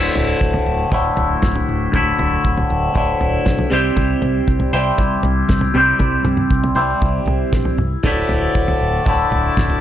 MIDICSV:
0, 0, Header, 1, 5, 480
1, 0, Start_track
1, 0, Tempo, 508475
1, 1831, Time_signature, 4, 2, 24, 8
1, 9258, End_track
2, 0, Start_track
2, 0, Title_t, "Transistor combo organ"
2, 0, Program_c, 0, 18
2, 7591, Note_on_c, 0, 76, 53
2, 7593, Note_on_c, 0, 69, 64
2, 7593, Note_on_c, 0, 74, 56
2, 7597, Note_on_c, 0, 81, 68
2, 9258, Note_off_c, 0, 69, 0
2, 9258, Note_off_c, 0, 74, 0
2, 9258, Note_off_c, 0, 76, 0
2, 9258, Note_off_c, 0, 81, 0
2, 9258, End_track
3, 0, Start_track
3, 0, Title_t, "Clean electric guitar"
3, 0, Program_c, 1, 27
3, 0, Note_on_c, 1, 38, 81
3, 0, Note_on_c, 1, 45, 73
3, 0, Note_on_c, 1, 50, 76
3, 0, Note_on_c, 1, 57, 82
3, 0, Note_on_c, 1, 64, 86
3, 843, Note_off_c, 1, 38, 0
3, 854, Note_on_c, 1, 38, 69
3, 855, Note_off_c, 1, 45, 0
3, 864, Note_off_c, 1, 50, 0
3, 866, Note_off_c, 1, 57, 0
3, 866, Note_on_c, 1, 45, 73
3, 874, Note_on_c, 1, 50, 68
3, 882, Note_off_c, 1, 64, 0
3, 882, Note_on_c, 1, 57, 76
3, 888, Note_on_c, 1, 64, 79
3, 1802, Note_off_c, 1, 38, 0
3, 1814, Note_off_c, 1, 45, 0
3, 1814, Note_on_c, 1, 38, 83
3, 1818, Note_off_c, 1, 50, 0
3, 1822, Note_off_c, 1, 57, 0
3, 1826, Note_on_c, 1, 45, 86
3, 1833, Note_on_c, 1, 50, 87
3, 1840, Note_on_c, 1, 57, 94
3, 1842, Note_off_c, 1, 64, 0
3, 1848, Note_on_c, 1, 64, 96
3, 2764, Note_off_c, 1, 38, 0
3, 2772, Note_off_c, 1, 45, 0
3, 2775, Note_on_c, 1, 38, 71
3, 2778, Note_off_c, 1, 50, 0
3, 2781, Note_off_c, 1, 57, 0
3, 2783, Note_on_c, 1, 45, 66
3, 2788, Note_on_c, 1, 50, 72
3, 2801, Note_on_c, 1, 57, 71
3, 2803, Note_off_c, 1, 64, 0
3, 2808, Note_on_c, 1, 64, 75
3, 3488, Note_off_c, 1, 38, 0
3, 3492, Note_on_c, 1, 48, 75
3, 3493, Note_off_c, 1, 45, 0
3, 3496, Note_off_c, 1, 50, 0
3, 3502, Note_off_c, 1, 57, 0
3, 3503, Note_on_c, 1, 55, 81
3, 3509, Note_on_c, 1, 60, 86
3, 3518, Note_off_c, 1, 64, 0
3, 3518, Note_on_c, 1, 64, 84
3, 3520, Note_on_c, 1, 67, 91
3, 3527, Note_on_c, 1, 72, 89
3, 4463, Note_off_c, 1, 72, 0
3, 4465, Note_off_c, 1, 67, 0
3, 4467, Note_on_c, 1, 72, 81
3, 4469, Note_on_c, 1, 67, 74
3, 4473, Note_off_c, 1, 64, 0
3, 4477, Note_on_c, 1, 64, 74
3, 4479, Note_off_c, 1, 60, 0
3, 4483, Note_on_c, 1, 60, 63
3, 4486, Note_off_c, 1, 55, 0
3, 4489, Note_on_c, 1, 55, 60
3, 4491, Note_off_c, 1, 48, 0
3, 4495, Note_on_c, 1, 48, 61
3, 5407, Note_off_c, 1, 48, 0
3, 5415, Note_off_c, 1, 55, 0
3, 5415, Note_off_c, 1, 72, 0
3, 5416, Note_off_c, 1, 67, 0
3, 5419, Note_on_c, 1, 48, 85
3, 5423, Note_off_c, 1, 60, 0
3, 5426, Note_on_c, 1, 55, 90
3, 5434, Note_on_c, 1, 60, 84
3, 5436, Note_off_c, 1, 64, 0
3, 5439, Note_on_c, 1, 64, 84
3, 5449, Note_on_c, 1, 67, 86
3, 5455, Note_on_c, 1, 72, 90
3, 6368, Note_off_c, 1, 72, 0
3, 6371, Note_off_c, 1, 48, 0
3, 6374, Note_off_c, 1, 67, 0
3, 6375, Note_off_c, 1, 55, 0
3, 6379, Note_off_c, 1, 60, 0
3, 6379, Note_on_c, 1, 72, 77
3, 6385, Note_on_c, 1, 67, 67
3, 6387, Note_off_c, 1, 64, 0
3, 6391, Note_on_c, 1, 64, 71
3, 6400, Note_on_c, 1, 60, 65
3, 6407, Note_on_c, 1, 55, 64
3, 6412, Note_on_c, 1, 48, 55
3, 7331, Note_off_c, 1, 72, 0
3, 7334, Note_off_c, 1, 67, 0
3, 7342, Note_off_c, 1, 60, 0
3, 7345, Note_off_c, 1, 55, 0
3, 7348, Note_off_c, 1, 48, 0
3, 7584, Note_on_c, 1, 38, 79
3, 7595, Note_on_c, 1, 45, 81
3, 7602, Note_on_c, 1, 50, 85
3, 7603, Note_off_c, 1, 64, 0
3, 7607, Note_on_c, 1, 57, 89
3, 7617, Note_on_c, 1, 64, 84
3, 8533, Note_off_c, 1, 38, 0
3, 8539, Note_off_c, 1, 45, 0
3, 8542, Note_off_c, 1, 50, 0
3, 8545, Note_off_c, 1, 57, 0
3, 8548, Note_on_c, 1, 38, 68
3, 8558, Note_on_c, 1, 45, 72
3, 8564, Note_on_c, 1, 50, 78
3, 8576, Note_off_c, 1, 64, 0
3, 8576, Note_on_c, 1, 57, 75
3, 8582, Note_on_c, 1, 64, 78
3, 9258, Note_off_c, 1, 38, 0
3, 9258, Note_off_c, 1, 45, 0
3, 9258, Note_off_c, 1, 50, 0
3, 9258, Note_off_c, 1, 57, 0
3, 9258, Note_off_c, 1, 64, 0
3, 9258, End_track
4, 0, Start_track
4, 0, Title_t, "Fingered electric bass"
4, 0, Program_c, 2, 33
4, 148, Note_on_c, 2, 26, 80
4, 312, Note_off_c, 2, 26, 0
4, 386, Note_on_c, 2, 26, 78
4, 551, Note_off_c, 2, 26, 0
4, 625, Note_on_c, 2, 26, 88
4, 790, Note_off_c, 2, 26, 0
4, 863, Note_on_c, 2, 26, 81
4, 1029, Note_off_c, 2, 26, 0
4, 1107, Note_on_c, 2, 26, 80
4, 1271, Note_off_c, 2, 26, 0
4, 1345, Note_on_c, 2, 26, 83
4, 1510, Note_off_c, 2, 26, 0
4, 1592, Note_on_c, 2, 26, 80
4, 1754, Note_off_c, 2, 26, 0
4, 1825, Note_on_c, 2, 26, 90
4, 1990, Note_off_c, 2, 26, 0
4, 2059, Note_on_c, 2, 26, 83
4, 2226, Note_off_c, 2, 26, 0
4, 2305, Note_on_c, 2, 26, 83
4, 2470, Note_off_c, 2, 26, 0
4, 2549, Note_on_c, 2, 26, 91
4, 2712, Note_off_c, 2, 26, 0
4, 2786, Note_on_c, 2, 26, 81
4, 2951, Note_off_c, 2, 26, 0
4, 3028, Note_on_c, 2, 26, 78
4, 3192, Note_off_c, 2, 26, 0
4, 3269, Note_on_c, 2, 35, 87
4, 3432, Note_off_c, 2, 35, 0
4, 3511, Note_on_c, 2, 36, 83
4, 3674, Note_off_c, 2, 36, 0
4, 3743, Note_on_c, 2, 36, 93
4, 3909, Note_off_c, 2, 36, 0
4, 3987, Note_on_c, 2, 36, 81
4, 4151, Note_off_c, 2, 36, 0
4, 4224, Note_on_c, 2, 36, 81
4, 4390, Note_off_c, 2, 36, 0
4, 4464, Note_on_c, 2, 36, 83
4, 4629, Note_off_c, 2, 36, 0
4, 4707, Note_on_c, 2, 36, 79
4, 4871, Note_off_c, 2, 36, 0
4, 4952, Note_on_c, 2, 36, 82
4, 5115, Note_off_c, 2, 36, 0
4, 5183, Note_on_c, 2, 36, 89
4, 5349, Note_off_c, 2, 36, 0
4, 5425, Note_on_c, 2, 36, 84
4, 5590, Note_off_c, 2, 36, 0
4, 5661, Note_on_c, 2, 36, 93
4, 5827, Note_off_c, 2, 36, 0
4, 5903, Note_on_c, 2, 36, 81
4, 6068, Note_off_c, 2, 36, 0
4, 6139, Note_on_c, 2, 36, 79
4, 6306, Note_off_c, 2, 36, 0
4, 6372, Note_on_c, 2, 36, 86
4, 6541, Note_off_c, 2, 36, 0
4, 6621, Note_on_c, 2, 36, 76
4, 6787, Note_off_c, 2, 36, 0
4, 6848, Note_on_c, 2, 36, 78
4, 7019, Note_off_c, 2, 36, 0
4, 7104, Note_on_c, 2, 34, 85
4, 7269, Note_off_c, 2, 34, 0
4, 7339, Note_on_c, 2, 36, 81
4, 7506, Note_off_c, 2, 36, 0
4, 7586, Note_on_c, 2, 26, 97
4, 7750, Note_off_c, 2, 26, 0
4, 7828, Note_on_c, 2, 26, 80
4, 7992, Note_off_c, 2, 26, 0
4, 8068, Note_on_c, 2, 26, 85
4, 8232, Note_off_c, 2, 26, 0
4, 8312, Note_on_c, 2, 26, 89
4, 8475, Note_off_c, 2, 26, 0
4, 8554, Note_on_c, 2, 26, 82
4, 8716, Note_off_c, 2, 26, 0
4, 8788, Note_on_c, 2, 26, 85
4, 8952, Note_off_c, 2, 26, 0
4, 9037, Note_on_c, 2, 26, 86
4, 9198, Note_off_c, 2, 26, 0
4, 9258, End_track
5, 0, Start_track
5, 0, Title_t, "Drums"
5, 146, Note_on_c, 9, 43, 78
5, 240, Note_off_c, 9, 43, 0
5, 388, Note_on_c, 9, 36, 107
5, 482, Note_off_c, 9, 36, 0
5, 508, Note_on_c, 9, 43, 82
5, 603, Note_off_c, 9, 43, 0
5, 865, Note_on_c, 9, 43, 76
5, 866, Note_on_c, 9, 36, 97
5, 960, Note_off_c, 9, 43, 0
5, 961, Note_off_c, 9, 36, 0
5, 1104, Note_on_c, 9, 43, 78
5, 1198, Note_off_c, 9, 43, 0
5, 1342, Note_on_c, 9, 47, 75
5, 1347, Note_on_c, 9, 36, 105
5, 1351, Note_on_c, 9, 38, 75
5, 1437, Note_off_c, 9, 47, 0
5, 1441, Note_off_c, 9, 36, 0
5, 1445, Note_off_c, 9, 38, 0
5, 1468, Note_on_c, 9, 43, 73
5, 1563, Note_off_c, 9, 43, 0
5, 1829, Note_on_c, 9, 36, 99
5, 1829, Note_on_c, 9, 43, 77
5, 1923, Note_off_c, 9, 36, 0
5, 1923, Note_off_c, 9, 43, 0
5, 2069, Note_on_c, 9, 43, 78
5, 2163, Note_off_c, 9, 43, 0
5, 2310, Note_on_c, 9, 36, 101
5, 2404, Note_off_c, 9, 36, 0
5, 2430, Note_on_c, 9, 43, 75
5, 2525, Note_off_c, 9, 43, 0
5, 2789, Note_on_c, 9, 43, 81
5, 2790, Note_on_c, 9, 36, 103
5, 2883, Note_off_c, 9, 43, 0
5, 2884, Note_off_c, 9, 36, 0
5, 3027, Note_on_c, 9, 43, 76
5, 3122, Note_off_c, 9, 43, 0
5, 3263, Note_on_c, 9, 47, 75
5, 3268, Note_on_c, 9, 36, 101
5, 3272, Note_on_c, 9, 38, 74
5, 3358, Note_off_c, 9, 47, 0
5, 3362, Note_off_c, 9, 36, 0
5, 3366, Note_off_c, 9, 38, 0
5, 3386, Note_on_c, 9, 43, 74
5, 3480, Note_off_c, 9, 43, 0
5, 3743, Note_on_c, 9, 43, 79
5, 3747, Note_on_c, 9, 36, 97
5, 3837, Note_off_c, 9, 43, 0
5, 3842, Note_off_c, 9, 36, 0
5, 3984, Note_on_c, 9, 43, 80
5, 4078, Note_off_c, 9, 43, 0
5, 4227, Note_on_c, 9, 36, 102
5, 4321, Note_off_c, 9, 36, 0
5, 4340, Note_on_c, 9, 43, 81
5, 4435, Note_off_c, 9, 43, 0
5, 4702, Note_on_c, 9, 43, 85
5, 4706, Note_on_c, 9, 36, 103
5, 4796, Note_off_c, 9, 43, 0
5, 4800, Note_off_c, 9, 36, 0
5, 4939, Note_on_c, 9, 43, 79
5, 5033, Note_off_c, 9, 43, 0
5, 5181, Note_on_c, 9, 47, 72
5, 5186, Note_on_c, 9, 36, 106
5, 5189, Note_on_c, 9, 38, 74
5, 5275, Note_off_c, 9, 47, 0
5, 5280, Note_off_c, 9, 36, 0
5, 5283, Note_off_c, 9, 38, 0
5, 5298, Note_on_c, 9, 43, 76
5, 5393, Note_off_c, 9, 43, 0
5, 5658, Note_on_c, 9, 43, 80
5, 5664, Note_on_c, 9, 36, 101
5, 5752, Note_off_c, 9, 43, 0
5, 5758, Note_off_c, 9, 36, 0
5, 5897, Note_on_c, 9, 43, 80
5, 5897, Note_on_c, 9, 47, 70
5, 5991, Note_off_c, 9, 43, 0
5, 5991, Note_off_c, 9, 47, 0
5, 6015, Note_on_c, 9, 47, 75
5, 6109, Note_off_c, 9, 47, 0
5, 6142, Note_on_c, 9, 36, 105
5, 6236, Note_off_c, 9, 36, 0
5, 6265, Note_on_c, 9, 43, 80
5, 6359, Note_off_c, 9, 43, 0
5, 6626, Note_on_c, 9, 36, 105
5, 6628, Note_on_c, 9, 43, 81
5, 6720, Note_off_c, 9, 36, 0
5, 6722, Note_off_c, 9, 43, 0
5, 6868, Note_on_c, 9, 43, 81
5, 6963, Note_off_c, 9, 43, 0
5, 7106, Note_on_c, 9, 36, 105
5, 7107, Note_on_c, 9, 38, 70
5, 7200, Note_off_c, 9, 36, 0
5, 7202, Note_off_c, 9, 38, 0
5, 7224, Note_on_c, 9, 43, 72
5, 7318, Note_off_c, 9, 43, 0
5, 7348, Note_on_c, 9, 47, 73
5, 7442, Note_off_c, 9, 47, 0
5, 7589, Note_on_c, 9, 36, 101
5, 7589, Note_on_c, 9, 43, 77
5, 7683, Note_off_c, 9, 36, 0
5, 7683, Note_off_c, 9, 43, 0
5, 7825, Note_on_c, 9, 43, 81
5, 7919, Note_off_c, 9, 43, 0
5, 8073, Note_on_c, 9, 36, 102
5, 8167, Note_off_c, 9, 36, 0
5, 8195, Note_on_c, 9, 43, 75
5, 8289, Note_off_c, 9, 43, 0
5, 8555, Note_on_c, 9, 36, 102
5, 8557, Note_on_c, 9, 43, 85
5, 8650, Note_off_c, 9, 36, 0
5, 8651, Note_off_c, 9, 43, 0
5, 8797, Note_on_c, 9, 43, 81
5, 8891, Note_off_c, 9, 43, 0
5, 9036, Note_on_c, 9, 36, 107
5, 9036, Note_on_c, 9, 47, 77
5, 9044, Note_on_c, 9, 38, 74
5, 9130, Note_off_c, 9, 47, 0
5, 9131, Note_off_c, 9, 36, 0
5, 9139, Note_off_c, 9, 38, 0
5, 9155, Note_on_c, 9, 43, 75
5, 9250, Note_off_c, 9, 43, 0
5, 9258, End_track
0, 0, End_of_file